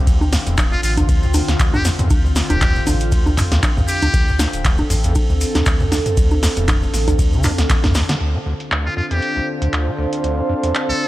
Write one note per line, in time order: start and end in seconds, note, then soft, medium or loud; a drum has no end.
0.00 8.17 D3 medium
0.00 8.17 C4 medium
0.00 8.21 F5 medium
0.07 0.38 D2 loud
0.07 0.23 D2 medium
0.07 4.13 F4 medium
0.07 kick loud
0.07 closed hi-hat soft
0.07 ride medium
0.07 maracas soft
0.21 0.25 F2 loud
0.21 high conga medium
0.21 maracas soft
0.33 0.37 F2 medium
0.33 snare medium
0.33 open hi-hat loud
0.33 maracas medium
0.47 0.77 D1 medium
0.47 0.56 E2 medium
0.47 closed hi-hat medium
0.47 maracas soft
0.57 kick loud
0.57 clap loud
0.57 closed hi-hat medium
0.57 ride medium
0.57 high conga medium
0.57 maracas medium
0.72 0.76 C2 medium
0.72 0.79 F4 medium
0.72 maracas soft
0.83 1.15 A1 loud
0.83 0.92 F4 medium
0.83 open hi-hat medium
0.83 maracas medium
0.97 1.04 D2 loud
0.97 closed hi-hat medium
0.97 high conga medium
0.97 maracas soft
1.09 1.24 D2 loud
1.09 kick loud
1.09 closed hi-hat medium
1.09 ride medium
1.09 maracas medium
1.23 1.38 D2 medium
1.23 1.27 D3 loud
1.23 maracas soft
1.34 1.42 D2 medium
1.34 open hi-hat loud
1.34 high conga medium
1.34 maracas medium
1.48 1.55 D2 loud
1.48 snare medium
1.48 closed hi-hat medium
1.48 maracas soft
1.60 1.75 D2 medium
1.60 kick loud
1.60 clap loud
1.60 closed hi-hat soft
1.60 ride medium
1.60 maracas medium
1.74 1.81 D2 medium
1.74 1.77 F2 loud
1.74 1.84 G4 medium
1.74 mid tom medium
1.74 high conga medium
1.74 maracas soft
1.85 1.90 F2 medium
1.85 snare medium
1.85 open hi-hat medium
1.85 maracas loud
1.99 2.09 E2 medium
1.99 closed hi-hat medium
1.99 mid tom medium
1.99 maracas soft
2.10 2.42 D2 loud
2.10 kick loud
2.10 closed hi-hat medium
2.10 ride medium
2.10 high conga medium
2.10 maracas medium
2.25 2.28 C2 medium
2.25 maracas soft
2.36 snare medium
2.36 open hi-hat loud
2.36 maracas medium
2.50 2.80 D1 medium
2.50 2.56 D2 loud
2.50 2.87 G4 medium
2.50 closed hi-hat medium
2.50 high conga medium
2.50 maracas soft
2.61 2.77 D2 loud
2.61 kick loud
2.61 clap loud
2.61 closed hi-hat soft
2.61 mid tom medium
2.61 ride medium
2.61 maracas soft
2.75 2.79 D3 loud
2.75 maracas soft
2.87 3.18 A1 loud
2.87 2.95 D2 medium
2.87 snare soft
2.87 open hi-hat medium
2.87 high conga medium
2.87 maracas medium
3.00 closed hi-hat medium
3.00 maracas soft
3.12 3.28 D2 medium
3.12 kick loud
3.12 closed hi-hat medium
3.12 ride medium
3.12 maracas medium
3.26 3.41 D2 medium
3.26 3.30 F2 loud
3.26 high conga medium
3.26 maracas soft
3.38 3.42 F2 medium
3.38 clap medium
3.38 mid tom medium
3.38 open hi-hat loud
3.38 maracas medium
3.52 3.59 D2 loud
3.52 3.61 E2 medium
3.52 snare medium
3.52 closed hi-hat medium
3.52 maracas soft
3.63 kick loud
3.63 clap loud
3.63 closed hi-hat medium
3.63 ride medium
3.63 high conga medium
3.63 maracas medium
3.77 3.81 C2 medium
3.77 3.84 D2 medium
3.77 mid tom medium
3.77 maracas soft
3.88 4.39 G4 loud
3.88 open hi-hat medium
3.88 maracas medium
4.02 4.09 D2 loud
4.02 closed hi-hat medium
4.02 high conga medium
4.02 maracas soft
4.14 4.29 D2 loud
4.14 4.45 D2 loud
4.14 8.20 A4 medium
4.14 kick loud
4.14 closed hi-hat medium
4.14 ride medium
4.14 maracas medium
4.28 4.32 D3 loud
4.28 maracas soft
4.39 4.47 D2 medium
4.39 snare medium
4.39 open hi-hat loud
4.39 high conga medium
4.39 maracas medium
4.53 4.83 D1 medium
4.53 closed hi-hat medium
4.53 maracas soft
4.65 4.80 D2 medium
4.65 kick loud
4.65 clap loud
4.65 closed hi-hat medium
4.65 ride medium
4.65 maracas medium
4.78 4.83 F2 loud
4.78 high conga medium
4.78 maracas soft
4.90 5.21 A1 loud
4.90 4.95 F2 medium
4.90 open hi-hat medium
4.90 maracas medium
5.04 5.14 E2 medium
5.04 closed hi-hat medium
5.04 maracas soft
5.15 kick loud
5.15 closed hi-hat medium
5.15 ride medium
5.15 high conga medium
5.15 maracas medium
5.29 5.33 C2 medium
5.29 5.45 D2 medium
5.29 maracas soft
5.41 open hi-hat loud
5.41 maracas medium
5.55 5.62 D2 loud
5.55 5.61 D2 loud
5.55 snare medium
5.55 closed hi-hat medium
5.55 high conga medium
5.55 maracas soft
5.66 5.82 D2 loud
5.66 kick loud
5.66 clap loud
5.66 closed hi-hat medium
5.66 ride medium
5.66 maracas medium
5.80 5.88 D2 medium
5.80 5.84 D3 loud
5.80 mid tom loud
5.80 maracas soft
5.92 6.00 D2 medium
5.92 snare medium
5.92 open hi-hat medium
5.92 high conga medium
5.92 maracas loud
6.06 closed hi-hat medium
6.06 mid tom medium
6.06 maracas soft
6.17 6.48 D2 loud
6.17 6.33 D2 medium
6.17 kick loud
6.17 closed hi-hat medium
6.17 ride medium
6.17 maracas medium
6.31 6.35 F2 loud
6.31 high conga medium
6.31 maracas soft
6.43 6.47 F2 medium
6.43 snare medium
6.43 open hi-hat loud
6.43 maracas medium
6.57 6.87 D1 medium
6.57 6.66 E2 medium
6.57 closed hi-hat medium
6.57 maracas soft
6.68 kick loud
6.68 clap loud
6.68 closed hi-hat medium
6.68 mid tom medium
6.68 ride medium
6.68 high conga medium
6.68 maracas soft
6.82 6.86 C2 medium
6.82 maracas soft
6.94 7.25 A1 loud
6.94 snare soft
6.94 open hi-hat medium
6.94 maracas medium
7.08 7.14 D2 loud
7.08 closed hi-hat medium
7.08 high conga medium
7.08 maracas soft
7.19 7.35 D2 loud
7.19 kick loud
7.19 closed hi-hat medium
7.19 ride medium
7.19 maracas medium
7.33 7.48 D2 medium
7.33 7.46 D3 loud
7.33 maracas soft
7.43 7.52 C2 medium
7.43 clap medium
7.43 mid tom medium
7.43 open hi-hat loud
7.43 high conga medium
7.43 maracas medium
7.58 7.66 D2 loud
7.58 snare medium
7.58 closed hi-hat medium
7.58 maracas soft
7.70 7.74 D2 loud
7.70 kick loud
7.70 snare medium
7.70 clap loud
7.70 closed hi-hat medium
7.70 ride medium
7.70 maracas medium
7.84 7.91 C2 loud
7.84 7.93 E2 loud
7.84 snare medium
7.84 mid tom medium
7.84 high conga medium
7.84 maracas soft
7.95 8.03 D2 loud
7.95 snare medium
7.95 open hi-hat loud
7.95 maracas medium
8.09 8.16 D3 loud
8.09 snare medium
8.09 closed hi-hat medium
8.09 maracas soft
8.20 8.36 D2 loud
8.20 11.08 D3 medium
8.20 11.08 C4 medium
8.20 11.08 D4 medium
8.20 11.08 F4 medium
8.20 closed hi-hat medium
8.35 8.39 D3 loud
8.40 11.08 A4 medium
8.46 8.54 D2 medium
8.58 11.08 F5 medium
8.58 closed hi-hat medium
8.68 8.87 D2 medium
8.68 11.08 C5 medium
8.68 clap loud
8.68 closed hi-hat medium
8.86 8.89 F2 loud
8.86 8.93 F4 medium
8.97 9.02 F2 medium
8.97 9.06 F4 medium
9.11 9.20 E2 medium
9.11 9.48 G4 medium
9.11 closed hi-hat medium
9.22 closed hi-hat medium
9.37 9.40 C2 medium
9.62 9.68 D2 medium
9.62 closed hi-hat medium
9.73 9.89 D2 medium
9.73 clap loud
9.73 closed hi-hat soft
9.87 9.91 D3 loud
9.99 10.06 D2 medium
10.13 closed hi-hat medium
10.24 10.40 D2 medium
10.24 closed hi-hat medium
10.38 10.42 F2 loud
10.49 10.54 F2 medium
10.63 10.73 E2 medium
10.63 closed hi-hat medium
10.75 clap loud
10.75 closed hi-hat soft
10.89 10.93 C2 medium
10.89 11.08 A4 medium